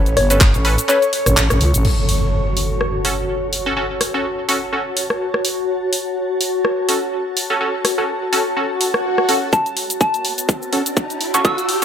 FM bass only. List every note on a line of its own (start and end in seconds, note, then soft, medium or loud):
0.00 0.15 A1 loud
0.17 0.52 G1 loud
0.54 0.76 A1 medium
1.26 1.35 A1 loud
1.37 1.48 A1 loud
1.50 1.59 A1 medium
1.61 1.72 C#2 loud
1.74 1.83 A1 loud